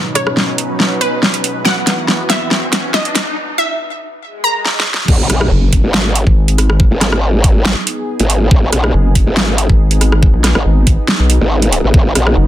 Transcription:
Already playing: B2 F#3 C#4 D#4 B4, riser
0.15 C#5, cross-stick, closed hi-hat
0.27 cross-stick
0.37 snare
0.58 closed hi-hat
0.80 snare
1.01 B4, closed hi-hat
1.23 snare
1.34 closed hi-hat
1.44 closed hi-hat
1.65 E2 E3 B3 F#4 F#5, snare
1.87 snare, closed hi-hat
2.08 snare
2.30 E5, snare, closed hi-hat
2.51 snare
2.73 snare, closed hi-hat
2.94 D#5, snare
3.05 closed hi-hat
3.15 snare, closed hi-hat
3.58 E5
4.23 swell
4.44 A#5
4.65 snare
4.80 snare
4.94 snare
5.08 G#1 B3 D#4 G#4, kick, crash, impact
5.30 A#1, cross-stick, closed hi-hat
5.41 cross-stick
5.51 F#1
5.73 kick, closed hi-hat
5.84 G#1
5.94 snare
6.15 closed hi-hat
6.27 G#1, kick
6.48 closed hi-hat
6.58 cross-stick, closed hi-hat
6.70 cross-stick
6.80 kick
6.91 G#1
7.01 cross-stick, snare, closed hi-hat
7.12 cross-stick
7.44 kick, closed hi-hat
7.65 snare
7.87 closed hi-hat
8.20 G#1, closed hi-hat
8.30 closed hi-hat
8.51 G#1, kick
8.73 A#1, cross-stick, closed hi-hat
8.84 cross-stick
8.94 F#1
9.15 kick, closed hi-hat
9.27 G#1
9.37 snare
9.58 closed hi-hat
9.70 G#1, kick
9.91 closed hi-hat
10.01 cross-stick, closed hi-hat
10.12 cross-stick
10.23 kick
10.34 A#1
10.44 cross-stick, snare, closed hi-hat
10.55 G#1, cross-stick
10.65 G#1
10.87 kick, closed hi-hat
11.08 snare
11.19 B1
11.30 closed hi-hat
11.41 G#1
11.62 closed hi-hat
11.72 closed hi-hat
11.84 G#1
11.94 G#1 F#4, kick
12.15 A#1, cross-stick, closed hi-hat
12.27 cross-stick
12.37 F#1

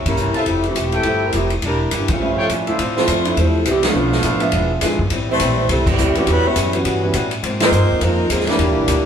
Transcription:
Already playing: C2
0.06 G3 A#3 C#4 E4 A#4, kick, ride
0.17 G1 C3 E3 A#3 C#4, hi-hat pedal
0.34 G3 C4 E4 F4 A4 E5 A5, muted upright bass stroke, ride
0.46 F1 F3 A3 E4 G4, kick, ride
0.64 E3 A3 C4 G4, ride
0.75 E1 F3 A3 E4 G4, kick, hi-hat pedal, ride
0.92 A4 E5 G5, ride
1.03 G1 F3 G3 A3 C4 E4 G4, kick, ride
1.07 G3 C4 E4 A4
1.25 G3 C4 E4 A#4
1.32 F1 F3 G3 A3 C4 E4 G4, kick, hi-hat pedal, ride
1.50 ride
1.62 E1 E3 A#3 D4 E4 G4 A#4, kick, ride
1.66 G3
1.91 G1 E3 A#3 D4 G4, kick, hi-hat pedal, ride
1.95 E3 D4
2.08 G2 C#3 F3, kick, ride
2.12 G3 A3 C#4 F4
2.20 A2 F3 G3 C#4 F4 E5
2.38 F4 A4 C#5 G5
2.49 A2 G3 C#4 F4, kick, hi-hat pedal, ride
2.67 D2 F3 A3 C4 D4 E4 F4 C5 E5, ride
2.78 A2 D3 F3 C4 E4, kick, ride
2.96 F3 A3 C4 E4 F4 C5, snare
3.08 F2 D3 F3 C4 E4, kick, hi-hat pedal, ride
3.25 F3 A3 C4 D4 E4, ride
3.36 E2 C3 D3 F3 A3 C4 E4 A4, kick, ride
3.65 C2 D3 E3 F3 G3 A3 C4 E4 G4, kick, hi-hat pedal, ride
3.70 C4
3.83 A2 D3 F3 A3 B3 D4 F4, snare, ride
3.94 B1 B2 D3 F3 A3 B3 C#4 D4 F4
4.12 snare
4.23 A1 B2 F3 A3 D4, kick, hi-hat pedal, ride
4.40 F3 G#3 B3 D4 E5, ride
4.52 E1 E3 G#3 D4, kick, ride
4.56 F4
4.81 G#1 E3 F3 G#3 B3 D4 F4, kick, snare, hi-hat pedal, ride
4.99 kick
5.10 A1 A2 G3 C4, kick, ride
5.14 E4
5.28 E3 G3 A3 C4 E4 G4 C5
5.39 A#1 A2 G3 C4 E4, kick, hi-hat pedal, ride
5.69 C2 A2 C3 E3 G3 A3 C4 E4 A4, kick, ride
5.86 C3 E3 G3 A3 C4 G4, kick, crash
5.98 D2 A2 G3 C4 E4, hi-hat pedal
6.15 C3 E3 G3 A3 B3 C4 C#4 F#4 G4, ride
6.26 E2 A2 E3 G3 B3 C#4 E4 F#4 B4, kick, ride
6.45 E3 G3 B3 C#4 E4 G4 C#5
6.56 F#2 A2 G3 C#4 F#4, kick, hi-hat pedal, ride
6.73 E3 G3 B3 C#4 F#4, ride
6.84 G2 A2 G3 C#4 F#4, kick, ride
7.03 E3 G3 B3 C#4 F#4
7.13 A2 G3 C#4 F#4, kick, hi-hat pedal, ride
7.31 ride
7.42 G#2 F3 A#3 C4, kick, ride
7.60 D#3 F3 A#3 C4 D#4 F4 C5, snare, ride
7.71 G2 G#2 F3 A#3 C4, hi-hat pedal
7.81 F2
7.91 D#2
7.99 F2 G#2 D#3 F3 A#3 C4 D#4, kick, ride
8.03 C4 A#4
8.27 D#2 G#2 D#3 F3 G#3 A#3 C4 D#4 G#4, kick, hi-hat pedal, ride
8.40 snare
8.46 A#2 D3 E3 G3 A#3 D4 E4 G4, snare, ride
8.58 E2 E3 A#3 D4 G4, kick, ride
8.68 D2
8.77 A#1
8.87 D2 E3 A#3 D4 G4, kick, hi-hat pedal, ride

